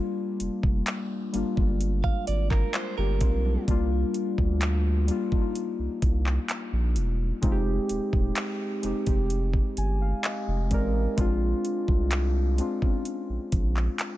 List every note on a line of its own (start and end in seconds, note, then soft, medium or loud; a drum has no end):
0.00 0.95 G3 medium
0.00 0.96 A#3 medium
0.00 0.96 D4 medium
0.00 0.97 F4 loud
0.40 0.49 F1 soft
0.40 closed hi-hat medium
0.63 0.81 F1 medium
0.63 kick loud
0.87 clap loud
0.87 closed hi-hat medium
1.33 1.43 G1 soft
1.33 1.49 G3 medium
1.33 1.49 A#3 medium
1.33 1.50 D4 medium
1.33 1.50 F4 medium
1.33 closed hi-hat medium
1.56 2.11 G1 medium
1.56 2.64 G3 medium
1.56 1.64 G#3 medium
1.56 2.65 D4 medium
1.56 2.66 F4 medium
1.56 kick medium
1.64 2.68 A#3 medium
1.81 closed hi-hat medium
2.04 2.26 F5 medium
2.04 kick medium
2.27 2.64 G#1 medium
2.27 2.50 D5 medium
2.27 closed hi-hat medium
2.51 2.74 A#4 medium
2.51 kick medium
2.51 clap medium
2.74 2.97 F4 medium
2.74 2.97 A#4 medium
2.74 2.96 C5 medium
2.74 clap loud
2.74 closed hi-hat medium
2.98 3.23 G1 medium
2.98 3.21 D4 medium
2.98 3.21 G4 medium
2.98 3.64 A#4 medium
3.21 3.57 B1 loud
3.21 3.45 C4 medium
3.21 3.44 F4 medium
3.21 kick medium
3.21 closed hi-hat medium
3.45 3.66 G3 medium
3.45 3.68 D4 medium
3.67 4.04 C2 loud
3.67 4.60 G3 loud
3.67 4.61 A#3 medium
3.67 4.61 D4 medium
3.67 4.62 F4 loud
3.67 kick loud
3.67 closed hi-hat medium
4.14 closed hi-hat medium
4.38 5.10 D2 medium
4.38 kick medium
4.61 clap loud
4.61 closed hi-hat medium
5.07 5.23 G3 medium
5.07 5.24 A#3 medium
5.07 5.25 D4 medium
5.07 5.25 F4 medium
5.07 closed hi-hat medium
5.31 6.55 G3 medium
5.31 6.55 A#3 medium
5.31 6.56 D4 medium
5.31 5.40 D#4 medium
5.31 kick medium
5.42 6.60 F4 medium
5.55 closed hi-hat medium
5.79 5.88 C2 soft
6.02 6.38 C2 medium
6.02 kick medium
6.02 closed hi-hat medium
6.26 clap medium
6.49 clap loud
6.49 closed hi-hat medium
6.73 6.98 A#1 medium
6.96 7.32 E1 loud
6.96 closed hi-hat medium
7.42 7.79 F1 loud
7.42 8.35 G#3 loud
7.42 8.35 C4 loud
7.42 8.36 D#4 loud
7.42 7.51 F4 medium
7.42 kick loud
7.42 closed hi-hat medium
7.52 8.40 G4 loud
7.89 7.99 D#1 soft
7.89 closed hi-hat medium
8.13 8.31 D#1 loud
8.13 kick medium
8.36 clap loud
8.36 closed hi-hat medium
8.82 8.93 F1 soft
8.82 8.98 G#3 medium
8.82 8.99 C4 medium
8.82 8.99 D#4 medium
8.82 9.00 G4 medium
8.82 closed hi-hat medium
9.05 9.61 F1 medium
9.05 10.14 G#3 medium
9.05 10.15 C4 medium
9.05 10.15 D#4 medium
9.05 10.16 G4 medium
9.05 kick medium
9.05 closed hi-hat soft
9.30 closed hi-hat medium
9.54 kick medium
9.77 10.13 G1 medium
9.77 10.00 G#5 medium
9.77 closed hi-hat medium
10.02 10.23 F5 medium
10.24 10.68 D#5 medium
10.24 clap loud
10.24 closed hi-hat medium
10.48 10.72 F1 medium
10.70 11.07 A1 loud
10.70 11.01 G#3 medium
10.70 11.02 C4 medium
10.70 11.03 D#4 medium
10.70 11.03 A#4 medium
10.70 11.15 D5 medium
10.70 kick medium
10.70 closed hi-hat medium
11.17 11.54 A#1 loud
11.17 12.10 G#3 loud
11.17 12.10 C4 medium
11.17 12.11 D4 loud
11.17 12.12 F4 loud
11.17 kick loud
11.17 closed hi-hat medium
11.65 closed hi-hat medium
11.88 12.60 C2 medium
11.88 kick medium
12.11 clap loud
12.11 closed hi-hat medium
12.57 12.73 G#3 medium
12.57 12.74 C4 medium
12.57 12.75 D4 medium
12.57 12.75 F4 medium
12.57 closed hi-hat medium
12.80 14.04 G#3 medium
12.80 14.05 C4 medium
12.80 12.89 C#4 medium
12.80 14.06 F4 medium
12.80 kick medium
12.89 14.09 D4 medium
13.05 closed hi-hat medium
13.29 13.38 A#1 soft
13.52 13.89 A#1 loud
13.52 kick loud
13.52 closed hi-hat medium
13.77 clap medium
13.99 clap loud
13.99 closed hi-hat medium